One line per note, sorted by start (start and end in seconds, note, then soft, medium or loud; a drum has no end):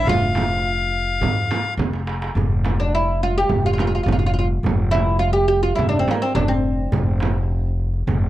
0.05 1.22 F1 medium
0.05 1.74 F5 medium
0.05 darbuka dum medium
0.05 frame drum medium
0.09 1.76 F4 loud
0.35 darbuka tek medium
0.35 frame drum medium
0.50 darbuka ka soft
1.21 1.48 F2 medium
1.21 darbuka dum medium
1.21 frame drum medium
1.51 darbuka tek medium
1.51 frame drum medium
1.77 2.31 F1 medium
1.77 darbuka tek medium
1.77 frame drum medium
1.93 darbuka ka medium
2.07 darbuka tek medium
2.22 darbuka ka medium
2.35 3.46 F1 medium
2.35 darbuka dum medium
2.35 frame drum medium
2.65 darbuka tek medium
2.65 frame drum medium
2.80 2.94 D4 medium
2.95 3.23 E4 medium
3.08 darbuka ka soft
3.21 3.37 F4 medium
3.21 darbuka ka soft
3.38 3.65 G4 medium
3.49 4.03 F1 medium
3.49 darbuka dum medium
3.49 frame drum medium
3.66 3.72 F4 medium
3.73 3.79 F4 medium
3.78 3.86 F4 medium
3.78 darbuka tek medium
3.78 frame drum medium
3.87 3.94 F4 soft
3.95 4.02 F4 soft
4.03 4.60 F1 medium
4.03 4.10 F4 soft
4.03 darbuka dum medium
4.08 frame drum medium
4.12 4.18 F4 soft
4.19 4.25 F4 soft
4.27 4.33 F4 medium
4.34 4.38 F4 soft
4.34 darbuka ka soft
4.39 4.46 F4 medium
4.63 5.74 F1 medium
4.63 darbuka dum medium
4.63 frame drum medium
4.91 5.19 E4 medium
4.91 darbuka tek medium
4.91 frame drum medium
5.19 5.33 F4 medium
5.33 5.47 G4 medium
5.48 5.62 G4 medium
5.63 5.75 F4 medium
5.76 6.05 F1 medium
5.76 5.88 E4 medium
5.76 darbuka dum medium
5.76 frame drum medium
5.89 5.99 D4 medium
5.99 6.12 C4 medium
6.08 6.22 A#3 medium
6.08 darbuka tek medium
6.08 frame drum medium
6.22 6.35 C4 medium
6.35 6.89 F1 medium
6.35 6.50 D4 medium
6.35 darbuka dum medium
6.35 frame drum medium
6.48 7.69 C4 medium
6.64 darbuka ka soft
6.92 8.03 F1 medium
6.92 darbuka dum medium
6.92 frame drum medium
7.20 darbuka tek medium
7.20 frame drum medium
7.64 darbuka ka soft
7.79 darbuka ka soft
7.94 darbuka ka soft
8.07 8.29 F1 medium
8.07 frame drum medium
8.07 darbuka dum medium